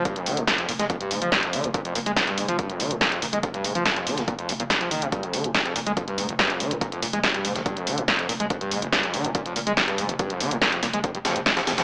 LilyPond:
<<
  \new Staff \with { instrumentName = "Acid bass" } { \clef bass \time 4/4 \key f \minor \tempo 4 = 142 g,16 f,16 ees16 aes,16 bes,16 f,16 bes,16 aes16 f,16 g,16 aes,16 f16 g,16 f,16 ees16 aes,16 | bes,16 f,16 bes,16 aes16 f,16 g,16 aes,16 f16 g,16 f,16 ees16 aes,16 bes,16 f,16 bes,16 aes16 | f,16 g,16 aes,16 f16 g,16 f,16 ees16 aes,16 bes,16 f,16 aes,16 bes,16 f,16 f16 ees16 c16 | g,16 f,16 ees16 aes,16 bes,16 f,16 bes,16 aes16 f,16 g,16 aes,16 f,,16 g,16 f,16 ees16 aes,16 |
bes,16 f,16 bes,16 aes16 f,16 g,16 aes,16 f,,16 g,16 f,16 ees16 aes,16 bes,16 f,16 bes,16 aes16 | f,16 g,16 aes,16 f,,16 g,16 f,16 ees16 aes,16 bes,16 f,16 bes,16 aes16 f,16 g,16 aes,16 f,,16 | g,16 f,16 ees16 aes,16 bes,16 f,16 bes,16 aes16 f,16 g,16 f,16 f16 aes16 f16 f,16 f,16 | }
  \new Staff \with { instrumentName = "808-style bass" } { \clef bass \time 4/4 \key f \minor r8 f,,16 f,,16 r8 f,,16 f,,16 r8 f,,16 f,,16 r8 f,,16 f,,16 | r8 f,,16 f,,16 r8 f,,16 f,,16 r8 f,,16 f,,16 r8 f,,16 f,,16 | r8 f,,16 f,,16 r8 f,,16 f,,16 r8 f,,16 f,,16 r8 f,,16 f,,16 | r8 f,,16 f,,16 r8 f,,16 f,,16 r8 f,,16 f,,16 r8 f,,16 f,,16 |
r8 f,,16 f,,16 r8 f,,16 f,,16 r8 f,,16 f,,16 r8 f,,16 f,,16 | r8 f,,16 f,,16 r8 f,,16 f,,16 r8 f,,16 f,,16 r8 f,,16 f,,16 | r8 f,,16 f,,16 r8 f,,16 f,,16 r8 f,,16 f,,16 r8 f,,16 f,,16 | }
  \new DrumStaff \with { instrumentName = "Drums" } \drummode { \time 4/4 <hh bd>16 hh16 <hh hho>16 hh16 <hh bd sn>16 hh16 <hh hho>16 <hh sn>16 <hh bd>16 hh16 <hh hho>16 hh16 <hh bd sn>16 hh16 <hh hho>16 hh16 | <hh bd>16 hh16 <hh hho>16 hh16 <hh bd sn>16 hh16 <hh hho>16 hh16 <hh bd>16 hh16 <hh hho>16 hh16 <hh bd sn>16 hh16 <hh hho>16 hh16 | <hh bd>16 hh16 <hh hho>16 hh16 <hh bd sn>16 hh16 <hh hho>16 <hh sn>16 <hh bd>16 hh16 <hh hho>16 hh16 <hh bd sn>16 hh16 <hh hho>16 hh16 | <hh bd>16 hh16 <hh hho>16 hh16 <hh bd sn>16 hh16 <hh hho>16 hh16 <hh bd>16 hh16 <hh hho>16 hh16 <hh bd sn>16 hh16 <hh hho>16 hh16 |
<hh bd>16 hh16 <hh hho>16 hh16 <hh bd sn>16 hh16 <hh hho>16 <hh sn>16 <hh bd>16 hh16 <hh hho>16 hh16 <hh bd sn>16 hh16 <hh hho>16 hh16 | <hh bd>16 hh16 <hh hho>16 hh16 <hh bd sn>16 hh16 <hh hho>16 hh16 <hh bd>16 hh16 <hh hho>16 hh16 <hh bd sn>16 hh16 <hh hho>16 hh16 | <hh bd>16 hh16 <hh hho>16 hh16 <hh bd sn>16 hh16 <hh hho sn>16 hh16 <hh bd>16 hh16 <hh hho sn>16 hh16 <hh bd sn>16 <hh sn>16 <hh hho sn>16 <hh sn>16 | }
>>